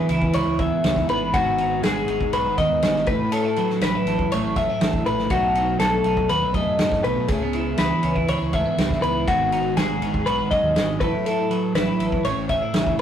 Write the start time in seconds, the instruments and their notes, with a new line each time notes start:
Already playing: clean electric guitar E3 B3 G#4 B4
0.09 fingered electric bass C#2, clean electric guitar E4, ride
0.22 kick
0.33 fingered electric bass C#2, clean electric guitar B4 C#5, ride
0.46 fingered electric bass C#2
0.59 clean electric guitar G#2 B3 E5, kick, ride
0.84 fingered electric bass C#2, clean electric guitar C#4, snare, ride
0.96 clean electric guitar E4, kick, snare
1.09 fingered electric bass A1, clean electric guitar B3 B4, ride
1.34 fingered electric bass G#1, clean electric guitar G#2 B3 F#4, kick, ride
1.58 clean electric guitar D#4, ride
1.83 fingered electric bass G#1, clean electric guitar G#3 F#4 G#4, snare, ride
2.08 fingered electric bass G#1, clean electric guitar D#4, ride
2.21 kick
2.33 fingered electric bass B1, clean electric guitar F#4 B4, ride
2.46 fingered electric bass G#1
2.57 clean electric guitar D#3 B3 D#5, kick, ride
2.70 fingered electric bass D#2
2.82 fingered electric bass G#1, clean electric guitar C#4, snare, ride
2.95 clean electric guitar D#4, snare
3.07 fingered electric bass A1, clean electric guitar A2 A3 B4, kick, ride
3.20 fingered electric bass A2
3.32 clean electric guitar C#4 A4, ride
3.45 clean electric guitar E4
3.56 clean electric guitar F#3 B4, ride
3.70 snare
3.81 fingered electric bass A1, clean electric guitar C#4 B4, snare, ride
3.95 clean electric guitar E4
4.06 fingered electric bass A1, clean electric guitar A4, snare, ride
4.19 kick
4.31 fingered electric bass A1, clean electric guitar A2 A3 C#5, ride
4.44 fingered electric bass A1
4.56 clean electric guitar C#4 E5, kick, ride
4.70 clean electric guitar E4
4.81 fingered electric bass A1, clean electric guitar A3, snare, ride
4.93 kick
5.06 fingered electric bass A#1, clean electric guitar A2 A3 B4, ride
5.19 snare
5.30 fingered electric bass B1, clean electric guitar B2 F#3 A3 D#4 F#4, kick, ride
5.34 clean electric guitar A4
5.55 clean electric guitar D#4, ride
5.79 fingered electric bass B1, clean electric guitar F#3 A4, snare, ride
6.04 fingered electric bass B1, clean electric guitar D#4, ride
6.17 kick
6.29 fingered electric bass D#2, clean electric guitar F#4 B4, ride
6.42 fingered electric bass B1, clean electric guitar A4
6.54 clean electric guitar F#2 A3 D#5, kick, ride
6.67 fingered electric bass F#2
6.79 fingered electric bass F#2, clean electric guitar A2, snare, ride
6.92 kick, snare
7.04 fingered electric bass B1, clean electric guitar B2 B4, ride
7.16 fingered electric bass B2
7.28 fingered electric bass C#2, clean electric guitar C#3 A3 G#4, kick, ride
7.43 clean electric guitar B3
7.53 clean electric guitar E4, ride
7.78 fingered electric bass C#2, clean electric guitar E3 G#4 B4, snare, ride
8.03 fingered electric bass C#2, clean electric guitar C#4, ride
8.15 clean electric guitar E4, kick
8.28 fingered electric bass C#2, clean electric guitar B4 C#5, ride
8.40 fingered electric bass C#2
8.53 clean electric guitar G#2 A3 E5, kick, ride
8.65 clean electric guitar B3
8.77 fingered electric bass C#2, clean electric guitar E4, snare, ride
8.91 kick, snare
9.02 fingered electric bass C#2, clean electric guitar B3 B4, ride
9.27 fingered electric bass G#1, clean electric guitar G#2 B3 F#4, kick, ride
9.52 clean electric guitar D#4, ride
9.77 fingered electric bass G#1, clean electric guitar G#3 F#4 G#4, snare, ride
10.02 fingered electric bass G#1, clean electric guitar D#4, ride
10.14 kick
10.26 fingered electric bass B1, clean electric guitar F#4 B4, ride
10.39 fingered electric bass G#1
10.51 clean electric guitar F#2 D#5, kick, ride
10.63 fingered electric bass D#2
10.76 fingered electric bass G#1, clean electric guitar G#2, snare, ride
11.00 fingered electric bass A1, clean electric guitar A2 F#3 A3 E4 A4 B4, kick, ride
11.13 fingered electric bass A2
11.26 clean electric guitar E4 A4, ride
11.50 clean electric guitar F#3 B4, ride
11.75 fingered electric bass A1, clean electric guitar E4 B4, snare, ride
11.99 fingered electric bass A1, clean electric guitar A4, ride
12.12 kick
12.24 fingered electric bass A1, clean electric guitar A2 C#4 C#5, ride
12.36 fingered electric bass A1
12.49 clean electric guitar C#4 E5, kick, ride
12.62 clean electric guitar E4
12.73 fingered electric bass A1, clean electric guitar C#3, snare, ride
12.87 kick
12.98 fingered electric bass A1